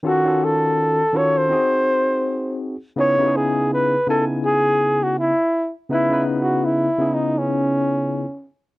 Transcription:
0.03 0.22 D#3 medium
0.03 0.22 C#4 medium
0.03 0.23 F4 medium
0.03 0.23 F#4 medium
0.03 0.24 A4 medium
0.08 0.46 F#4 medium
0.24 1.01 D#3 medium
0.24 1.02 C#4 medium
0.24 1.02 F4 medium
0.24 1.02 F#4 medium
0.24 1.03 A4 medium
0.44 1.18 A4 medium
1.13 1.51 D#3 medium
1.13 1.51 C#4 medium
1.13 1.52 F4 medium
1.13 1.50 F#4 medium
1.13 1.52 A4 medium
1.17 1.39 C#5 medium
1.38 2.62 C5 loud
1.49 2.75 C4 medium
1.49 2.75 D#4 medium
1.49 2.76 F#4 medium
1.49 2.76 G#4 medium
2.96 3.15 C#3 medium
2.96 3.15 B3 medium
2.96 3.16 D#4 medium
2.96 3.16 E4 medium
2.96 3.16 G#4 medium
2.96 3.38 C#5 loud
3.18 3.94 C#3 medium
3.18 3.95 B3 medium
3.18 3.95 D#4 medium
3.18 3.96 E4 medium
3.18 3.26 G4 medium
3.28 3.99 G#4 medium
3.36 3.72 G#4 medium
3.73 4.06 B4 loud
4.07 5.31 C#3 medium
4.07 5.32 B3 medium
4.07 5.32 D#4 medium
4.07 5.33 E4 medium
4.07 4.25 A4 medium
4.07 5.33 G#5 medium
4.46 5.05 G#4 loud
5.03 5.18 F#4 medium
5.19 5.72 E4 medium
5.89 6.08 C#3 medium
5.89 6.08 B3 medium
5.89 6.09 D#4 medium
5.89 6.09 E4 medium
5.89 6.26 E4 loud
5.89 6.09 B4 medium
6.10 6.87 C#3 medium
6.10 6.87 B3 medium
6.10 6.88 D#4 medium
6.10 6.88 E4 medium
6.10 6.88 B4 medium
6.41 6.67 F#4 medium
6.65 7.16 E4 medium
6.98 8.23 C#3 medium
6.98 8.24 B3 medium
6.98 8.24 D#4 medium
6.98 8.25 E4 medium
6.98 8.25 G#4 medium
7.14 7.40 D#4 medium
7.38 8.47 C#4 medium

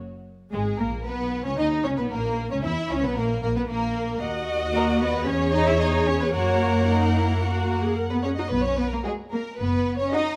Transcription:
0.52 0.78 G#1 soft
0.52 0.78 G#3 soft
0.52 0.60 G#3 soft
0.52 0.61 G#3 soft
0.52 0.77 G#4 soft
0.78 1.06 A#1 soft
0.78 0.87 A#3 soft
0.78 1.05 A#3 soft
0.78 0.87 A#3 soft
0.78 1.06 A#4 soft
1.05 1.46 B1 soft
1.05 1.45 B3 medium
1.05 1.45 B3 soft
1.05 1.44 B4 soft
1.44 1.59 C#2 soft
1.44 1.58 C#4 soft
1.44 1.59 C#4 soft
1.44 1.58 C#5 soft
1.58 1.85 D#2 soft
1.58 1.85 D#4 medium
1.58 1.66 D#4 medium
1.58 1.86 D#4 soft
1.58 1.66 D#5 soft
1.84 1.98 C#2 soft
1.84 1.98 C#4 soft
1.84 1.99 C#4 soft
1.84 1.90 C#5 soft
1.98 2.12 B1 soft
1.98 2.12 B3 soft
1.98 2.04 B3 soft
1.98 2.12 B3 soft
1.98 2.03 B4 soft
2.10 2.51 A#1 soft
2.10 2.50 A#3 medium
2.10 2.51 A#3 soft
2.10 2.52 A#3 medium
2.10 2.50 A#4 soft
2.51 2.57 C#2 soft
2.51 2.64 C#4 soft
2.51 2.65 C#4 soft
2.51 2.57 C#4 medium
2.51 2.57 C#5 soft
2.64 2.72 E2 medium
2.64 2.90 E4 soft
2.64 2.72 E4 medium
2.64 2.90 E4 soft
2.64 2.90 E5 soft
2.89 3.04 C#2 soft
2.89 3.03 C#4 medium
2.89 3.04 C#4 soft
2.89 3.04 C#4 medium
2.89 3.04 C#5 medium
3.03 3.17 B1 soft
3.03 3.17 B3 soft
3.03 3.18 B3 medium
3.03 3.17 B4 soft
3.16 3.42 A#1 medium
3.16 3.41 A#3 medium
3.16 3.26 A#3 medium
3.16 3.41 A#4 medium
3.42 3.56 A#1 medium
3.42 3.48 A#3 soft
3.42 3.49 A#3 medium
3.42 3.57 A#3 soft
3.42 3.56 A#4 soft
3.55 3.70 B1 soft
3.55 3.61 B3 soft
3.55 3.70 B3 medium
3.55 3.70 B3 soft
3.55 3.62 B4 soft
3.67 4.21 A#1 soft
3.67 4.20 A#3 medium
3.67 4.21 A#3 medium
3.67 4.22 A#3 soft
3.67 4.21 A#4 medium
4.21 5.23 D#2 soft
4.21 5.23 F#4 medium
4.21 5.23 D#5 medium
4.21 5.23 F#5 soft
4.75 4.99 A#3 medium
4.75 4.83 A#4 medium
5.01 5.27 B3 medium
5.01 5.27 B4 medium
5.27 6.34 E2 medium
5.27 5.53 C#4 medium
5.27 6.34 G#4 medium
5.27 6.34 C#5 medium
5.27 5.54 C#5 medium
5.53 5.66 D#4 medium
5.53 5.67 D#5 medium
5.66 5.80 E4 medium
5.66 5.80 E5 medium
5.80 6.06 D#4 medium
5.80 5.88 D#5 medium
6.07 6.21 C#4 medium
6.07 6.20 C#5 medium
6.20 6.35 B3 soft
6.20 6.34 B4 soft
6.33 8.32 F#2 soft
6.33 7.94 A#3 medium
6.33 6.83 F#4 soft
6.33 7.94 A#4 medium
6.33 6.82 C#5 medium
6.33 8.27 F#5 soft
6.88 7.13 D#4 medium
7.15 7.42 E4 soft
7.42 7.83 F#4 soft
7.84 7.97 G#4 soft
7.96 8.04 A#4 soft
8.11 8.24 B3 soft
8.11 8.16 B4 soft
8.23 8.30 C#4 soft
8.23 8.30 G#4 soft
8.23 8.29 C#5 medium
8.37 8.44 D#4 soft
8.37 8.44 F#4 soft
8.37 8.51 D#5 soft
8.51 8.95 B1 medium
8.51 8.65 B3 medium
8.51 8.65 B4 medium
8.65 8.79 C#4 medium
8.65 8.79 C#5 soft
8.79 8.84 B3 medium
8.79 8.92 B4 soft
8.92 8.98 A#3 medium
8.92 9.06 A#4 soft
9.05 9.14 G#3 soft
9.05 9.46 F#4 soft
9.05 9.13 G#4 soft
9.05 9.46 D#5 soft
9.05 9.46 F#5 soft
9.32 9.41 A#3 soft
9.32 9.59 A#4 soft
9.58 10.02 F#1 medium
9.58 9.99 B3 medium
9.58 9.98 B4 soft
9.98 10.14 C#4 medium
9.98 10.12 C#5 soft
10.12 10.36 D#4 medium
10.12 10.36 F#4 medium
10.12 10.36 D#5 soft
10.12 10.36 D#5 medium
10.12 10.36 F#5 medium

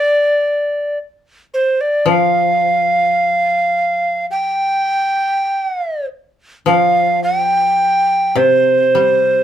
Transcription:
0.00 0.99 D5 loud
1.54 1.82 C5 medium
1.81 2.08 D5 medium
2.06 5.44 F3 medium
2.06 4.26 F5 medium
4.31 6.06 G5 medium
6.66 9.44 F3 medium
6.66 7.20 F5 medium
7.23 8.38 G5 loud
8.36 9.44 C3 medium
8.36 9.44 C5 medium
8.95 9.44 G3 soft

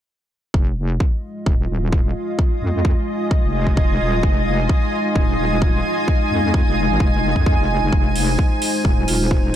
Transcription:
0.54 0.99 F1 medium
0.54 9.56 G#3 medium
0.54 4.20 F4 medium
0.54 9.56 F4 medium
0.54 7.88 D#5 medium
0.54 kick loud
0.82 9.13 D#5 medium
1.00 kick loud
1.30 9.56 G#5 medium
1.46 1.68 D#1 medium
1.46 kick loud
1.69 2.14 D#1 medium
1.93 kick loud
2.39 kick loud
2.62 2.95 F2 medium
2.85 kick loud
3.31 kick loud
3.44 3.88 F1 medium
3.67 kick medium
3.77 kick loud
3.90 3.98 F1 medium
4.00 4.22 D#1 medium
4.23 4.68 F1 medium
4.23 9.56 D#4 medium
4.23 kick loud
4.69 kick loud
5.16 5.37 D#1 medium
5.16 kick loud
5.39 5.83 D#1 medium
5.62 kick loud
6.08 kick loud
6.31 6.65 F2 medium
6.54 kick loud
6.67 6.88 F1 medium
6.90 6.99 G#1 medium
7.00 7.34 F1 medium
7.00 kick loud
7.36 7.57 F2 medium
7.36 kick medium
7.46 kick loud
7.59 7.80 F1 medium
7.82 7.91 F1 loud
7.92 8.37 F1 medium
7.92 9.56 D#4 medium
7.92 9.56 C5 medium
7.92 kick loud
8.16 open hi-hat medium
8.39 9.56 C5 medium
8.39 kick loud
8.62 open hi-hat loud
8.85 9.06 D#1 medium
8.85 kick loud
9.08 9.52 D#1 loud
9.08 9.27 F4 medium
9.08 open hi-hat loud
9.31 kick loud

